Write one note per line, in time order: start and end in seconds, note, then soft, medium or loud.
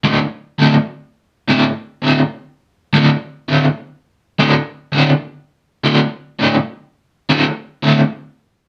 0.04 0.19 D2 medium
0.04 0.19 A2 medium
0.04 0.20 D3 medium
0.58 0.73 D2 medium
0.58 0.74 A2 medium
0.58 0.74 D3 medium
1.48 1.63 D2 medium
1.48 1.64 A2 loud
1.48 1.64 D3 medium
2.02 2.18 D2 medium
2.02 2.19 A2 medium
2.02 2.19 D3 medium
2.93 3.09 D2 medium
2.93 3.09 A2 medium
2.93 3.10 D3 medium
3.48 3.63 D2 medium
3.48 3.64 A2 medium
3.48 3.64 D3 loud
4.39 4.54 D2 medium
4.39 4.54 A2 medium
4.39 4.55 D3 medium
4.92 5.08 D2 medium
4.92 5.09 A2 loud
4.92 5.09 D3 loud
5.84 5.99 D2 medium
5.84 6.00 A2 medium
5.84 6.00 D3 loud
6.39 6.54 D2 medium
6.39 6.54 A2 medium
6.39 6.55 D3 medium
7.29 7.44 D2 medium
7.29 7.44 A2 loud
7.29 7.45 D3 loud
7.83 7.98 D2 medium
7.83 7.98 A2 medium
7.83 7.98 D3 loud